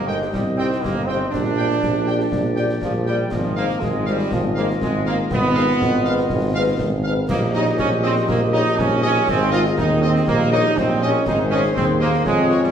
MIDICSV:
0, 0, Header, 1, 7, 480
1, 0, Start_track
1, 0, Tempo, 496278
1, 331, Time_signature, 2, 2, 24, 8
1, 12296, End_track
2, 0, Start_track
2, 0, Title_t, "Trumpet section"
2, 0, Program_c, 0, 61
2, 72, Note_on_c, 0, 79, 67
2, 162, Note_off_c, 0, 79, 0
2, 559, Note_on_c, 0, 79, 70
2, 648, Note_off_c, 0, 79, 0
2, 1039, Note_on_c, 0, 79, 64
2, 1128, Note_off_c, 0, 79, 0
2, 1516, Note_on_c, 0, 79, 65
2, 1606, Note_off_c, 0, 79, 0
2, 1996, Note_on_c, 0, 79, 63
2, 2085, Note_off_c, 0, 79, 0
2, 2469, Note_on_c, 0, 79, 66
2, 2560, Note_off_c, 0, 79, 0
2, 2962, Note_on_c, 0, 79, 62
2, 3050, Note_off_c, 0, 79, 0
2, 3439, Note_on_c, 0, 77, 71
2, 3528, Note_off_c, 0, 77, 0
2, 3915, Note_on_c, 0, 77, 68
2, 4005, Note_off_c, 0, 77, 0
2, 4402, Note_on_c, 0, 77, 68
2, 4491, Note_off_c, 0, 77, 0
2, 4883, Note_on_c, 0, 77, 70
2, 4971, Note_off_c, 0, 77, 0
2, 5359, Note_on_c, 0, 77, 71
2, 5449, Note_off_c, 0, 77, 0
2, 5847, Note_on_c, 0, 77, 68
2, 5935, Note_off_c, 0, 77, 0
2, 6323, Note_on_c, 0, 77, 80
2, 6412, Note_off_c, 0, 77, 0
2, 6802, Note_on_c, 0, 77, 73
2, 6890, Note_off_c, 0, 77, 0
2, 7287, Note_on_c, 0, 75, 80
2, 7375, Note_off_c, 0, 75, 0
2, 7758, Note_on_c, 0, 75, 72
2, 7848, Note_off_c, 0, 75, 0
2, 8244, Note_on_c, 0, 75, 80
2, 8333, Note_off_c, 0, 75, 0
2, 8722, Note_on_c, 0, 75, 80
2, 8811, Note_off_c, 0, 75, 0
2, 9196, Note_on_c, 0, 75, 85
2, 9286, Note_off_c, 0, 75, 0
2, 9687, Note_on_c, 0, 75, 74
2, 9775, Note_off_c, 0, 75, 0
2, 10172, Note_on_c, 0, 75, 83
2, 10259, Note_off_c, 0, 75, 0
2, 10657, Note_on_c, 0, 75, 81
2, 10743, Note_off_c, 0, 75, 0
2, 11130, Note_on_c, 0, 75, 74
2, 11217, Note_off_c, 0, 75, 0
2, 11604, Note_on_c, 0, 75, 68
2, 11693, Note_off_c, 0, 75, 0
2, 12093, Note_on_c, 0, 73, 70
2, 12179, Note_off_c, 0, 73, 0
2, 12296, End_track
3, 0, Start_track
3, 0, Title_t, "Woodwind section"
3, 0, Program_c, 1, 71
3, 0, Note_on_c, 1, 67, 73
3, 0, Note_on_c, 1, 75, 73
3, 1249, Note_off_c, 1, 75, 0
3, 1250, Note_off_c, 1, 67, 0
3, 1288, Note_on_c, 1, 74, 80
3, 1289, Note_on_c, 1, 67, 79
3, 3171, Note_off_c, 1, 67, 0
3, 3171, Note_off_c, 1, 74, 0
3, 3201, Note_on_c, 1, 75, 79
3, 3212, Note_on_c, 1, 65, 80
3, 5127, Note_off_c, 1, 65, 0
3, 5127, Note_off_c, 1, 75, 0
3, 5138, Note_on_c, 1, 65, 83
3, 5140, Note_on_c, 1, 75, 89
3, 6885, Note_off_c, 1, 65, 0
3, 6885, Note_off_c, 1, 75, 0
3, 7050, Note_on_c, 1, 67, 96
3, 7058, Note_on_c, 1, 75, 91
3, 8933, Note_off_c, 1, 67, 0
3, 8938, Note_off_c, 1, 75, 0
3, 8974, Note_on_c, 1, 68, 94
3, 8976, Note_on_c, 1, 75, 102
3, 9930, Note_on_c, 1, 67, 88
3, 9934, Note_off_c, 1, 68, 0
3, 10853, Note_off_c, 1, 67, 0
3, 10857, Note_off_c, 1, 75, 0
3, 10901, Note_on_c, 1, 68, 86
3, 10902, Note_on_c, 1, 72, 87
3, 11344, Note_off_c, 1, 68, 0
3, 11345, Note_off_c, 1, 72, 0
3, 11372, Note_on_c, 1, 68, 90
3, 11374, Note_on_c, 1, 72, 86
3, 11819, Note_off_c, 1, 68, 0
3, 11820, Note_off_c, 1, 72, 0
3, 11843, Note_on_c, 1, 68, 81
3, 11845, Note_on_c, 1, 73, 82
3, 12294, Note_off_c, 1, 68, 0
3, 12295, Note_off_c, 1, 73, 0
3, 12296, End_track
4, 0, Start_track
4, 0, Title_t, "French horn section"
4, 0, Program_c, 2, 60
4, 94, Note_on_c, 2, 72, 61
4, 96, Note_on_c, 2, 63, 64
4, 96, Note_on_c, 2, 67, 63
4, 180, Note_off_c, 2, 72, 0
4, 181, Note_off_c, 2, 63, 0
4, 181, Note_off_c, 2, 67, 0
4, 577, Note_on_c, 2, 63, 71
4, 577, Note_on_c, 2, 67, 71
4, 578, Note_on_c, 2, 72, 68
4, 662, Note_off_c, 2, 63, 0
4, 662, Note_off_c, 2, 67, 0
4, 662, Note_off_c, 2, 72, 0
4, 1051, Note_on_c, 2, 67, 64
4, 1052, Note_on_c, 2, 72, 64
4, 1054, Note_on_c, 2, 63, 62
4, 1138, Note_off_c, 2, 67, 0
4, 1138, Note_off_c, 2, 72, 0
4, 1139, Note_off_c, 2, 63, 0
4, 1532, Note_on_c, 2, 67, 71
4, 1533, Note_off_c, 2, 67, 0
4, 1533, Note_on_c, 2, 67, 70
4, 1534, Note_on_c, 2, 74, 69
4, 1619, Note_off_c, 2, 67, 0
4, 1619, Note_off_c, 2, 74, 0
4, 2017, Note_on_c, 2, 67, 61
4, 2021, Note_off_c, 2, 67, 0
4, 2021, Note_on_c, 2, 67, 67
4, 2021, Note_on_c, 2, 74, 62
4, 2105, Note_off_c, 2, 67, 0
4, 2105, Note_off_c, 2, 74, 0
4, 2496, Note_on_c, 2, 74, 68
4, 2501, Note_on_c, 2, 67, 66
4, 2502, Note_off_c, 2, 67, 0
4, 2502, Note_on_c, 2, 67, 71
4, 2581, Note_off_c, 2, 74, 0
4, 2586, Note_off_c, 2, 67, 0
4, 2975, Note_on_c, 2, 67, 64
4, 2977, Note_off_c, 2, 67, 0
4, 2977, Note_on_c, 2, 67, 66
4, 2980, Note_on_c, 2, 74, 64
4, 3062, Note_off_c, 2, 67, 0
4, 3064, Note_off_c, 2, 74, 0
4, 3450, Note_on_c, 2, 63, 74
4, 3450, Note_on_c, 2, 68, 68
4, 3452, Note_on_c, 2, 72, 76
4, 3537, Note_off_c, 2, 63, 0
4, 3537, Note_off_c, 2, 68, 0
4, 3538, Note_off_c, 2, 72, 0
4, 3929, Note_on_c, 2, 63, 65
4, 3929, Note_on_c, 2, 68, 62
4, 3931, Note_on_c, 2, 72, 69
4, 4016, Note_off_c, 2, 63, 0
4, 4016, Note_off_c, 2, 68, 0
4, 4017, Note_off_c, 2, 72, 0
4, 4421, Note_on_c, 2, 63, 75
4, 4423, Note_on_c, 2, 72, 71
4, 4425, Note_on_c, 2, 68, 74
4, 4505, Note_off_c, 2, 63, 0
4, 4507, Note_off_c, 2, 72, 0
4, 4508, Note_off_c, 2, 68, 0
4, 4894, Note_on_c, 2, 63, 65
4, 4894, Note_on_c, 2, 68, 69
4, 4897, Note_on_c, 2, 72, 70
4, 4980, Note_off_c, 2, 63, 0
4, 4980, Note_off_c, 2, 68, 0
4, 4982, Note_off_c, 2, 72, 0
4, 5384, Note_on_c, 2, 71, 77
4, 5385, Note_on_c, 2, 63, 78
4, 5386, Note_on_c, 2, 68, 75
4, 5468, Note_off_c, 2, 63, 0
4, 5468, Note_off_c, 2, 71, 0
4, 5469, Note_off_c, 2, 68, 0
4, 5863, Note_on_c, 2, 71, 65
4, 5865, Note_on_c, 2, 63, 68
4, 5867, Note_on_c, 2, 68, 74
4, 5947, Note_off_c, 2, 71, 0
4, 5949, Note_off_c, 2, 63, 0
4, 5950, Note_off_c, 2, 68, 0
4, 6340, Note_on_c, 2, 68, 77
4, 6344, Note_on_c, 2, 63, 73
4, 6344, Note_on_c, 2, 71, 83
4, 6425, Note_off_c, 2, 68, 0
4, 6428, Note_off_c, 2, 63, 0
4, 6428, Note_off_c, 2, 71, 0
4, 6817, Note_on_c, 2, 68, 77
4, 6818, Note_on_c, 2, 71, 68
4, 6821, Note_on_c, 2, 63, 73
4, 6902, Note_off_c, 2, 68, 0
4, 6903, Note_off_c, 2, 71, 0
4, 6906, Note_off_c, 2, 63, 0
4, 7290, Note_on_c, 2, 67, 84
4, 7291, Note_on_c, 2, 63, 82
4, 7294, Note_on_c, 2, 73, 84
4, 7377, Note_off_c, 2, 67, 0
4, 7378, Note_off_c, 2, 63, 0
4, 7380, Note_off_c, 2, 73, 0
4, 7769, Note_on_c, 2, 73, 71
4, 7770, Note_on_c, 2, 67, 74
4, 7774, Note_on_c, 2, 63, 72
4, 7856, Note_off_c, 2, 73, 0
4, 7857, Note_off_c, 2, 67, 0
4, 7860, Note_off_c, 2, 63, 0
4, 8249, Note_on_c, 2, 73, 83
4, 8252, Note_on_c, 2, 63, 78
4, 8255, Note_on_c, 2, 67, 84
4, 8337, Note_off_c, 2, 73, 0
4, 8339, Note_off_c, 2, 63, 0
4, 8341, Note_off_c, 2, 67, 0
4, 8720, Note_on_c, 2, 63, 78
4, 8723, Note_on_c, 2, 73, 74
4, 8725, Note_on_c, 2, 67, 79
4, 8809, Note_off_c, 2, 63, 0
4, 8812, Note_off_c, 2, 73, 0
4, 8813, Note_off_c, 2, 67, 0
4, 9202, Note_on_c, 2, 68, 85
4, 9202, Note_on_c, 2, 72, 86
4, 9203, Note_on_c, 2, 63, 86
4, 9291, Note_off_c, 2, 68, 0
4, 9291, Note_off_c, 2, 72, 0
4, 9292, Note_off_c, 2, 63, 0
4, 9685, Note_on_c, 2, 63, 79
4, 9687, Note_on_c, 2, 72, 80
4, 9689, Note_on_c, 2, 68, 83
4, 9773, Note_off_c, 2, 63, 0
4, 9775, Note_off_c, 2, 72, 0
4, 9777, Note_off_c, 2, 68, 0
4, 10171, Note_on_c, 2, 63, 90
4, 10172, Note_on_c, 2, 67, 84
4, 10174, Note_on_c, 2, 73, 88
4, 10258, Note_off_c, 2, 63, 0
4, 10259, Note_off_c, 2, 67, 0
4, 10260, Note_off_c, 2, 73, 0
4, 10663, Note_on_c, 2, 63, 73
4, 10663, Note_on_c, 2, 67, 79
4, 10671, Note_on_c, 2, 73, 75
4, 10747, Note_off_c, 2, 63, 0
4, 10748, Note_off_c, 2, 67, 0
4, 10753, Note_off_c, 2, 73, 0
4, 11135, Note_on_c, 2, 63, 83
4, 11136, Note_on_c, 2, 72, 82
4, 11140, Note_on_c, 2, 68, 86
4, 11221, Note_off_c, 2, 63, 0
4, 11222, Note_off_c, 2, 72, 0
4, 11225, Note_off_c, 2, 68, 0
4, 11609, Note_on_c, 2, 68, 77
4, 11609, Note_on_c, 2, 72, 74
4, 11614, Note_on_c, 2, 63, 75
4, 11696, Note_off_c, 2, 68, 0
4, 11697, Note_off_c, 2, 72, 0
4, 11700, Note_off_c, 2, 63, 0
4, 12086, Note_on_c, 2, 68, 77
4, 12091, Note_off_c, 2, 68, 0
4, 12091, Note_on_c, 2, 65, 75
4, 12091, Note_on_c, 2, 68, 76
4, 12178, Note_off_c, 2, 65, 0
4, 12178, Note_off_c, 2, 68, 0
4, 12296, End_track
5, 0, Start_track
5, 0, Title_t, "Trombone section"
5, 0, Program_c, 3, 61
5, 71, Note_on_c, 3, 56, 100
5, 308, Note_on_c, 3, 55, 97
5, 321, Note_off_c, 3, 56, 0
5, 421, Note_off_c, 3, 55, 0
5, 547, Note_on_c, 3, 60, 101
5, 781, Note_off_c, 3, 60, 0
5, 792, Note_on_c, 3, 58, 106
5, 1026, Note_on_c, 3, 60, 104
5, 1041, Note_off_c, 3, 58, 0
5, 1267, Note_on_c, 3, 62, 117
5, 1279, Note_off_c, 3, 60, 0
5, 2680, Note_off_c, 3, 62, 0
5, 2721, Note_on_c, 3, 53, 101
5, 2831, Note_off_c, 3, 53, 0
5, 2956, Note_on_c, 3, 55, 85
5, 3186, Note_off_c, 3, 55, 0
5, 3206, Note_on_c, 3, 53, 94
5, 3448, Note_off_c, 3, 53, 0
5, 3452, Note_on_c, 3, 58, 102
5, 3675, Note_off_c, 3, 58, 0
5, 3687, Note_on_c, 3, 56, 93
5, 3929, Note_off_c, 3, 56, 0
5, 3938, Note_on_c, 3, 55, 107
5, 4174, Note_off_c, 3, 55, 0
5, 4179, Note_on_c, 3, 53, 94
5, 4285, Note_off_c, 3, 53, 0
5, 4415, Note_on_c, 3, 58, 101
5, 4522, Note_off_c, 3, 58, 0
5, 4662, Note_on_c, 3, 56, 95
5, 4881, Note_off_c, 3, 56, 0
5, 4899, Note_on_c, 3, 58, 108
5, 5005, Note_off_c, 3, 58, 0
5, 5142, Note_on_c, 3, 59, 123
5, 6539, Note_off_c, 3, 59, 0
5, 7049, Note_on_c, 3, 58, 114
5, 7158, Note_off_c, 3, 58, 0
5, 7295, Note_on_c, 3, 63, 122
5, 7402, Note_off_c, 3, 63, 0
5, 7520, Note_on_c, 3, 61, 123
5, 7631, Note_off_c, 3, 61, 0
5, 7767, Note_on_c, 3, 60, 117
5, 7876, Note_off_c, 3, 60, 0
5, 8015, Note_on_c, 3, 58, 108
5, 8122, Note_off_c, 3, 58, 0
5, 8256, Note_on_c, 3, 63, 123
5, 8478, Note_off_c, 3, 63, 0
5, 8499, Note_on_c, 3, 61, 121
5, 8723, Note_off_c, 3, 61, 0
5, 8735, Note_on_c, 3, 61, 122
5, 8957, Note_off_c, 3, 61, 0
5, 8987, Note_on_c, 3, 60, 124
5, 9208, Note_on_c, 3, 65, 124
5, 9220, Note_off_c, 3, 60, 0
5, 9317, Note_off_c, 3, 65, 0
5, 9455, Note_on_c, 3, 63, 110
5, 9677, Note_off_c, 3, 63, 0
5, 9692, Note_on_c, 3, 60, 116
5, 9933, Note_off_c, 3, 60, 0
5, 9942, Note_on_c, 3, 58, 118
5, 10161, Note_off_c, 3, 58, 0
5, 10172, Note_on_c, 3, 63, 126
5, 10396, Note_off_c, 3, 63, 0
5, 10418, Note_on_c, 3, 60, 119
5, 10656, Note_off_c, 3, 60, 0
5, 10658, Note_on_c, 3, 61, 110
5, 10896, Note_off_c, 3, 61, 0
5, 10905, Note_on_c, 3, 63, 114
5, 11010, Note_off_c, 3, 63, 0
5, 11129, Note_on_c, 3, 61, 121
5, 11238, Note_off_c, 3, 61, 0
5, 11357, Note_on_c, 3, 60, 116
5, 11469, Note_off_c, 3, 60, 0
5, 11605, Note_on_c, 3, 58, 112
5, 11833, Note_off_c, 3, 58, 0
5, 11849, Note_on_c, 3, 56, 111
5, 12186, Note_off_c, 3, 56, 0
5, 12206, Note_on_c, 3, 55, 97
5, 12296, Note_off_c, 3, 55, 0
5, 12296, End_track
6, 0, Start_track
6, 0, Title_t, "Tuba"
6, 0, Program_c, 4, 58
6, 0, Note_on_c, 4, 31, 81
6, 249, Note_off_c, 4, 31, 0
6, 324, Note_on_c, 4, 36, 81
6, 727, Note_off_c, 4, 36, 0
6, 808, Note_on_c, 4, 31, 86
6, 1209, Note_off_c, 4, 31, 0
6, 1286, Note_on_c, 4, 34, 80
6, 1688, Note_off_c, 4, 34, 0
6, 1765, Note_on_c, 4, 34, 84
6, 2167, Note_off_c, 4, 34, 0
6, 2243, Note_on_c, 4, 34, 81
6, 2647, Note_off_c, 4, 34, 0
6, 2728, Note_on_c, 4, 34, 85
6, 3129, Note_off_c, 4, 34, 0
6, 3217, Note_on_c, 4, 32, 78
6, 3574, Note_off_c, 4, 32, 0
6, 3693, Note_on_c, 4, 32, 85
6, 4092, Note_off_c, 4, 32, 0
6, 4186, Note_on_c, 4, 32, 88
6, 4579, Note_off_c, 4, 32, 0
6, 4658, Note_on_c, 4, 32, 88
6, 5055, Note_off_c, 4, 32, 0
6, 5135, Note_on_c, 4, 32, 88
6, 5533, Note_off_c, 4, 32, 0
6, 5614, Note_on_c, 4, 32, 90
6, 6013, Note_off_c, 4, 32, 0
6, 6098, Note_on_c, 4, 32, 96
6, 6495, Note_off_c, 4, 32, 0
6, 6581, Note_on_c, 4, 32, 91
6, 6977, Note_off_c, 4, 32, 0
6, 7042, Note_on_c, 4, 34, 95
6, 7447, Note_off_c, 4, 34, 0
6, 7521, Note_on_c, 4, 34, 91
6, 7927, Note_off_c, 4, 34, 0
6, 7998, Note_on_c, 4, 34, 89
6, 8405, Note_off_c, 4, 34, 0
6, 8473, Note_on_c, 4, 34, 93
6, 8883, Note_off_c, 4, 34, 0
6, 8965, Note_on_c, 4, 32, 96
6, 9369, Note_off_c, 4, 32, 0
6, 9446, Note_on_c, 4, 39, 94
6, 9850, Note_off_c, 4, 39, 0
6, 9927, Note_on_c, 4, 34, 102
6, 10330, Note_off_c, 4, 34, 0
6, 10403, Note_on_c, 4, 34, 100
6, 10769, Note_off_c, 4, 34, 0
6, 10891, Note_on_c, 4, 32, 94
6, 11292, Note_off_c, 4, 32, 0
6, 11369, Note_on_c, 4, 39, 97
6, 11771, Note_off_c, 4, 39, 0
6, 11846, Note_on_c, 4, 41, 94
6, 12250, Note_off_c, 4, 41, 0
6, 12296, End_track
7, 0, Start_track
7, 0, Title_t, "Drums"
7, 86, Note_on_c, 9, 38, 49
7, 183, Note_off_c, 9, 38, 0
7, 209, Note_on_c, 9, 38, 52
7, 306, Note_off_c, 9, 38, 0
7, 327, Note_on_c, 9, 35, 80
7, 327, Note_on_c, 9, 38, 79
7, 424, Note_off_c, 9, 35, 0
7, 424, Note_off_c, 9, 38, 0
7, 570, Note_on_c, 9, 38, 56
7, 667, Note_off_c, 9, 38, 0
7, 696, Note_on_c, 9, 38, 52
7, 793, Note_off_c, 9, 38, 0
7, 817, Note_on_c, 9, 35, 79
7, 817, Note_on_c, 9, 38, 76
7, 913, Note_off_c, 9, 35, 0
7, 913, Note_off_c, 9, 38, 0
7, 1056, Note_on_c, 9, 38, 51
7, 1153, Note_off_c, 9, 38, 0
7, 1295, Note_on_c, 9, 35, 78
7, 1295, Note_on_c, 9, 38, 70
7, 1295, Note_on_c, 9, 49, 33
7, 1392, Note_off_c, 9, 35, 0
7, 1392, Note_off_c, 9, 38, 0
7, 1392, Note_off_c, 9, 49, 0
7, 1533, Note_on_c, 9, 38, 54
7, 1630, Note_off_c, 9, 38, 0
7, 1649, Note_on_c, 9, 38, 58
7, 1746, Note_off_c, 9, 38, 0
7, 1767, Note_on_c, 9, 35, 78
7, 1767, Note_on_c, 9, 38, 79
7, 1864, Note_off_c, 9, 35, 0
7, 1864, Note_off_c, 9, 38, 0
7, 2006, Note_on_c, 9, 38, 50
7, 2103, Note_off_c, 9, 38, 0
7, 2126, Note_on_c, 9, 38, 56
7, 2223, Note_off_c, 9, 38, 0
7, 2243, Note_on_c, 9, 35, 80
7, 2243, Note_on_c, 9, 38, 75
7, 2340, Note_off_c, 9, 35, 0
7, 2340, Note_off_c, 9, 38, 0
7, 2481, Note_on_c, 9, 38, 54
7, 2578, Note_off_c, 9, 38, 0
7, 2603, Note_on_c, 9, 38, 57
7, 2700, Note_off_c, 9, 38, 0
7, 2725, Note_on_c, 9, 35, 76
7, 2725, Note_on_c, 9, 38, 74
7, 2822, Note_off_c, 9, 35, 0
7, 2822, Note_off_c, 9, 38, 0
7, 2964, Note_on_c, 9, 38, 50
7, 3061, Note_off_c, 9, 38, 0
7, 3204, Note_on_c, 9, 35, 79
7, 3204, Note_on_c, 9, 38, 74
7, 3204, Note_on_c, 9, 49, 32
7, 3301, Note_off_c, 9, 35, 0
7, 3301, Note_off_c, 9, 38, 0
7, 3301, Note_off_c, 9, 49, 0
7, 3447, Note_on_c, 9, 38, 53
7, 3544, Note_off_c, 9, 38, 0
7, 3570, Note_on_c, 9, 38, 53
7, 3666, Note_off_c, 9, 38, 0
7, 3692, Note_on_c, 9, 35, 78
7, 3692, Note_on_c, 9, 38, 77
7, 3789, Note_off_c, 9, 35, 0
7, 3789, Note_off_c, 9, 38, 0
7, 3932, Note_on_c, 9, 38, 55
7, 4029, Note_off_c, 9, 38, 0
7, 4052, Note_on_c, 9, 38, 57
7, 4149, Note_off_c, 9, 38, 0
7, 4171, Note_on_c, 9, 35, 85
7, 4171, Note_on_c, 9, 38, 79
7, 4268, Note_off_c, 9, 35, 0
7, 4268, Note_off_c, 9, 38, 0
7, 4415, Note_on_c, 9, 38, 56
7, 4512, Note_off_c, 9, 38, 0
7, 4539, Note_on_c, 9, 38, 57
7, 4636, Note_off_c, 9, 38, 0
7, 4657, Note_on_c, 9, 35, 78
7, 4657, Note_on_c, 9, 38, 72
7, 4753, Note_off_c, 9, 35, 0
7, 4753, Note_off_c, 9, 38, 0
7, 4894, Note_on_c, 9, 38, 55
7, 4991, Note_off_c, 9, 38, 0
7, 5135, Note_on_c, 9, 35, 85
7, 5135, Note_on_c, 9, 38, 77
7, 5135, Note_on_c, 9, 49, 32
7, 5231, Note_off_c, 9, 35, 0
7, 5231, Note_off_c, 9, 38, 0
7, 5231, Note_off_c, 9, 49, 0
7, 5378, Note_on_c, 9, 38, 54
7, 5475, Note_off_c, 9, 38, 0
7, 5501, Note_on_c, 9, 38, 58
7, 5598, Note_off_c, 9, 38, 0
7, 5621, Note_on_c, 9, 35, 79
7, 5621, Note_on_c, 9, 38, 77
7, 5718, Note_off_c, 9, 35, 0
7, 5718, Note_off_c, 9, 38, 0
7, 5856, Note_on_c, 9, 38, 52
7, 5953, Note_off_c, 9, 38, 0
7, 5973, Note_on_c, 9, 38, 56
7, 6070, Note_off_c, 9, 38, 0
7, 6088, Note_on_c, 9, 35, 84
7, 6088, Note_on_c, 9, 38, 71
7, 6185, Note_off_c, 9, 35, 0
7, 6185, Note_off_c, 9, 38, 0
7, 6567, Note_on_c, 9, 35, 74
7, 6567, Note_on_c, 9, 38, 81
7, 6664, Note_off_c, 9, 35, 0
7, 6664, Note_off_c, 9, 38, 0
7, 7050, Note_on_c, 9, 35, 88
7, 7050, Note_on_c, 9, 38, 80
7, 7050, Note_on_c, 9, 49, 55
7, 7146, Note_off_c, 9, 35, 0
7, 7146, Note_off_c, 9, 38, 0
7, 7146, Note_off_c, 9, 49, 0
7, 7289, Note_on_c, 9, 38, 55
7, 7385, Note_off_c, 9, 38, 0
7, 7406, Note_on_c, 9, 38, 55
7, 7502, Note_off_c, 9, 38, 0
7, 7531, Note_on_c, 9, 35, 78
7, 7531, Note_on_c, 9, 38, 76
7, 7628, Note_off_c, 9, 35, 0
7, 7628, Note_off_c, 9, 38, 0
7, 7771, Note_on_c, 9, 38, 52
7, 7868, Note_off_c, 9, 38, 0
7, 7892, Note_on_c, 9, 38, 61
7, 7989, Note_off_c, 9, 38, 0
7, 8013, Note_on_c, 9, 35, 82
7, 8013, Note_on_c, 9, 38, 81
7, 8110, Note_off_c, 9, 35, 0
7, 8110, Note_off_c, 9, 38, 0
7, 8260, Note_on_c, 9, 38, 57
7, 8357, Note_off_c, 9, 38, 0
7, 8379, Note_on_c, 9, 38, 58
7, 8476, Note_off_c, 9, 38, 0
7, 8499, Note_on_c, 9, 35, 81
7, 8499, Note_on_c, 9, 38, 77
7, 8596, Note_off_c, 9, 35, 0
7, 8596, Note_off_c, 9, 38, 0
7, 8739, Note_on_c, 9, 38, 55
7, 8836, Note_off_c, 9, 38, 0
7, 8977, Note_on_c, 9, 35, 86
7, 8977, Note_on_c, 9, 38, 78
7, 8977, Note_on_c, 9, 49, 33
7, 9074, Note_off_c, 9, 35, 0
7, 9074, Note_off_c, 9, 38, 0
7, 9074, Note_off_c, 9, 49, 0
7, 9222, Note_on_c, 9, 38, 59
7, 9318, Note_off_c, 9, 38, 0
7, 9337, Note_on_c, 9, 38, 62
7, 9433, Note_off_c, 9, 38, 0
7, 9457, Note_on_c, 9, 35, 82
7, 9457, Note_on_c, 9, 38, 79
7, 9554, Note_off_c, 9, 35, 0
7, 9554, Note_off_c, 9, 38, 0
7, 9701, Note_on_c, 9, 38, 53
7, 9798, Note_off_c, 9, 38, 0
7, 9824, Note_on_c, 9, 38, 58
7, 9921, Note_off_c, 9, 38, 0
7, 9937, Note_on_c, 9, 35, 82
7, 9937, Note_on_c, 9, 38, 79
7, 10034, Note_off_c, 9, 35, 0
7, 10034, Note_off_c, 9, 38, 0
7, 10178, Note_on_c, 9, 38, 60
7, 10274, Note_off_c, 9, 38, 0
7, 10299, Note_on_c, 9, 38, 58
7, 10395, Note_off_c, 9, 38, 0
7, 10417, Note_on_c, 9, 35, 81
7, 10417, Note_on_c, 9, 38, 77
7, 10514, Note_off_c, 9, 35, 0
7, 10514, Note_off_c, 9, 38, 0
7, 10657, Note_on_c, 9, 38, 57
7, 10754, Note_off_c, 9, 38, 0
7, 10893, Note_on_c, 9, 35, 87
7, 10893, Note_on_c, 9, 38, 78
7, 10893, Note_on_c, 9, 49, 32
7, 10990, Note_off_c, 9, 35, 0
7, 10990, Note_off_c, 9, 38, 0
7, 10990, Note_off_c, 9, 49, 0
7, 11137, Note_on_c, 9, 38, 53
7, 11234, Note_off_c, 9, 38, 0
7, 11259, Note_on_c, 9, 38, 55
7, 11355, Note_off_c, 9, 38, 0
7, 11379, Note_on_c, 9, 35, 79
7, 11379, Note_on_c, 9, 38, 75
7, 11476, Note_off_c, 9, 35, 0
7, 11476, Note_off_c, 9, 38, 0
7, 11620, Note_on_c, 9, 38, 52
7, 11717, Note_off_c, 9, 38, 0
7, 11740, Note_on_c, 9, 38, 59
7, 11837, Note_off_c, 9, 38, 0
7, 11856, Note_on_c, 9, 35, 82
7, 11856, Note_on_c, 9, 38, 77
7, 11953, Note_off_c, 9, 35, 0
7, 11953, Note_off_c, 9, 38, 0
7, 12103, Note_on_c, 9, 38, 52
7, 12200, Note_off_c, 9, 38, 0
7, 12223, Note_on_c, 9, 38, 57
7, 12296, Note_off_c, 9, 38, 0
7, 12296, End_track
0, 0, End_of_file